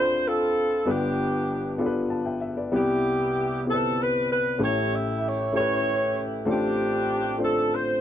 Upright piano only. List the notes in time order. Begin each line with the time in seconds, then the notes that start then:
Already playing: D2 D3 C4 D4 F4 A4 C5 B5
0.86 G1 G2 B3 D4 F4 G4 B4
1.78 B3 D4 F4 G4 A4
1.86 B4
2.10 F5 A5
2.26 E5 G5
2.41 E5
2.57 B4 D5
2.72 C2 C3 G3 B3 E4 G4 B4
3.65 B3 C4 E4 G4 A4
3.73 B4
4.58 A1 A2 A3 C#4 E4 G4 A4
5.52 A3 C#4 E4 G4 A4
5.60 B4
6.45 A1 A2 A3 C4 D4 F4 A4
7.38 A3 C4 D4 F4 C5